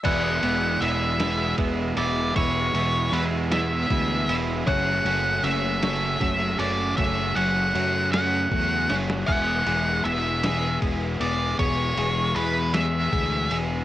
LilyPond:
<<
  \new Staff \with { instrumentName = "Lead electric guitar" } { \time 6/8 \key e \mixolydian \tempo 4. = 52 fis''4 e''4 r8 d''8 | cis''4 b'8 e''4 r8 | fis''4 e''4. d''8 | e''8 fis''4 fis''4 r8 |
fis''4 e''4 r8 d''8 | cis''4 b'8 e''4 r8 | }
  \new Staff \with { instrumentName = "Synth bell" } { \time 6/8 \key e \mixolydian d''2.~ | d''2. | cis''2.~ | cis''2~ cis''8 r8 |
e''2.~ | e''2. | }
  \new Staff \with { instrumentName = "Clean electric guitar" } { \clef bass \time 6/8 \key e \mixolydian <e, b, e gis b e'>8 <e, b, e gis b e'>8 <e, b, e gis b e'>8 <e, b, e gis b e'>8 <e, b, e gis b e'>8 <e, b, e gis b e'>8 | <e, b, e gis b e'>8 <e, b, e gis b e'>8 <e, b, e gis b e'>8 <e, b, e gis b e'>8 <e, b, e gis b e'>8 <e, b, e gis b e'>8 | <fis, cis fis a cis' fis'>8 <fis, cis fis a cis' fis'>8 <fis, cis fis a cis' fis'>8 <fis, cis fis a cis' fis'>8 <fis, cis fis a cis' fis'>8 <fis, cis fis a cis' fis'>8 | <fis, cis fis a cis' fis'>8 <fis, cis fis a cis' fis'>8 <fis, cis fis a cis' fis'>8 <fis, cis fis a cis' fis'>8 <fis, cis fis a cis' fis'>8 <fis, cis fis a cis' fis'>8 |
<e, b, e gis b gis'>8 <e, b, e gis b gis'>8 <e, b, e gis b gis'>8 <e, b, e gis b gis'>8 <e, b, e gis b gis'>8 <e, b, e gis b gis'>8 | <e, b, e gis b gis'>8 <e, b, e gis b gis'>8 <e, b, e gis b gis'>8 <e, b, e gis b gis'>8 <e, b, e gis b gis'>8 <e, b, e gis b gis'>8 | }
  \new Staff \with { instrumentName = "Overdriven electric guitar" } { \clef bass \time 6/8 \key e \mixolydian <e, b, e gis b e'>8 <e, b, e gis b e'>8 <e, b, e gis b e'>8 <e, b, e gis b e'>8 <e, b, e gis b e'>8 <e, b, e gis b e'>8 | <e, b, e gis b e'>8 <e, b, e gis b e'>8 <e, b, e gis b e'>8 <e, b, e gis b e'>8 <e, b, e gis b e'>8 <e, b, e gis b e'>8 | <fis, cis fis a cis' fis'>8 <fis, cis fis a cis' fis'>8 <fis, cis fis a cis' fis'>8 <fis, cis fis a cis' fis'>8 <fis, cis fis a cis' fis'>8 <fis, cis fis a cis' fis'>8 | <fis, cis fis a cis' fis'>8 <fis, cis fis a cis' fis'>8 <fis, cis fis a cis' fis'>8 <fis, cis fis a cis' fis'>8 <fis, cis fis a cis' fis'>8 <fis, cis fis a cis' fis'>8 |
<e, b, e gis b gis'>8 <e, b, e gis b gis'>8 <e, b, e gis b gis'>8 <e, b, e gis b gis'>8 <e, b, e gis b gis'>8 <e, b, e gis b gis'>8 | <e, b, e gis b gis'>8 <e, b, e gis b gis'>8 <e, b, e gis b gis'>8 <e, b, e gis b gis'>8 <e, b, e gis b gis'>8 <e, b, e gis b gis'>8 | }
  \new Staff \with { instrumentName = "Fingered electric bass" } { \clef bass \time 6/8 \key e \mixolydian e,,8 e,,8 e,,4 e,,8 e,,8 | e,,8 e,,8 e,4 d,8 e,,8 | fis,,8 fis,,8 fis,,4 fis,,8 fis,,8 | fis,,8 fis,,8 fis,4 e,8 fis,,8 |
e,,8 e,,8 e,,4 e,,8 e,,8 | e,,8 e,,8 e,4 d,8 e,,8 | }
  \new DrumStaff \with { instrumentName = "Drums" } \drummode { \time 6/8 <cymc bd cymr>8 cymr8 cymr8 <cymr sn>8 <bd cymr>8 cymr8 | <bd cymr>8 cymr8 cymr8 <cymr sn>8 <bd cymr>8 cymr8 | <bd cymr>8 cymr8 cymr8 <cymr sn>8 <bd cymr>8 cymr8 | <bd cymr>8 cymr8 cymr8 <cymr sn>8 <bd cymr>8 <cymr sn>16 sn16 |
<cymc bd>8 cymr8 cymr8 <cymr sn>8 <bd cymr>8 cymr8 | <bd cymr>8 cymr8 cymr8 <cymr sn>8 <bd cymr>8 cymr8 | }
>>